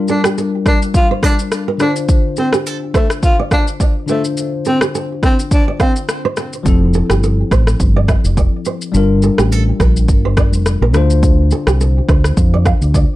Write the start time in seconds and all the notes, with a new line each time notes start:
Already playing: G3 D4 F4 A#4
0.08 D4 A4, shaker
0.24 G4, cross-stick, shaker
0.38 A4, shaker
0.66 D4 A#4, kick, cross-stick, shaker
0.82 shaker
0.94 F4, kick, shaker
1.11 C5
1.23 D4 D5, kick, cross-stick, shaker
1.39 shaker
1.52 cross-stick, shaker
1.68 A#4
1.78 D3 D4 F4 A4, cross-stick, shaker
1.83 C5
1.96 shaker
2.09 kick, shaker
2.37 C4 A4, shaker
2.53 G4, cross-stick, shaker
2.66 A4, shaker
2.94 A3 C5, kick, cross-stick, shaker
3.10 cross-stick, shaker
3.23 F4, kick, shaker
3.39 D5
3.51 D4 F5, kick, cross-stick, shaker
3.68 shaker
3.80 D5, kick, shaker
4.06 D3 A3 D4 F4 C5, shaker
4.11 C5
4.24 shaker
4.37 shaker
4.65 C4 A4, shaker
4.81 G4, cross-stick, shaker
4.95 A4, shaker
5.23 C4 C5, kick, cross-stick, shaker
5.39 shaker
5.51 D4, kick, shaker
5.68 D5
5.80 C4 F5, kick, cross-stick, shaker
5.96 shaker
6.09 cross-stick, shaker
6.25 C5
6.37 A4, cross-stick, shaker
6.53 shaker
6.63 F1 F3 C4 E4, kick, shaker
6.68 A4
6.94 A4, shaker
7.10 G1 G4, cross-stick, shaker
7.24 A4, shaker
7.51 A1 C5, kick, cross-stick, shaker
7.67 cross-stick, shaker
7.80 G1, kick, shaker
7.96 D5
8.08 E5, kick, cross-stick, shaker
8.24 F1, shaker
8.37 D5, kick, shaker
8.65 C5, shaker
8.82 shaker
8.92 G1 G3 D4 F4, shaker
8.97 A#4
9.22 A4, shaker
9.38 A1 G4, cross-stick, shaker
9.52 A4, shaker
9.80 A#1 A#4, kick, cross-stick, shaker
9.96 shaker
10.08 G1, kick, shaker
10.25 C5
10.37 D5, kick, cross-stick, shaker
10.53 F1, shaker
10.66 cross-stick, shaker
10.81 A#1 A#4
10.92 D2 D3 D4 F4 A4, cross-stick, shaker
10.97 C5
11.10 shaker
11.23 kick, shaker
11.51 A4, shaker
11.67 C2 G4, cross-stick, shaker
11.81 A4, shaker
12.09 D2 C5, kick, cross-stick, shaker
12.24 cross-stick, shaker
12.37 F2, kick, shaker
12.54 D5
12.66 F5, kick, cross-stick, shaker
12.81 D2, shaker
12.94 D5, kick, shaker